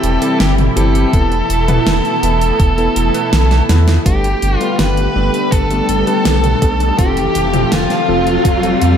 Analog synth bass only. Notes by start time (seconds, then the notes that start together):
0.03 E1
0.40 G1
0.77 G1
1.13 E1
1.50 E1
1.87 E1
2.23 E1
2.60 E1
2.96 E1
3.33 B1
3.70 E2
4.06 G1
4.43 G1
4.79 G1
5.16 G1
5.52 G1
5.89 G1
6.25 B1
6.62 B1
6.99 F1
7.35 F1
7.72 F1
8.08 F1
8.45 F1
8.81 F2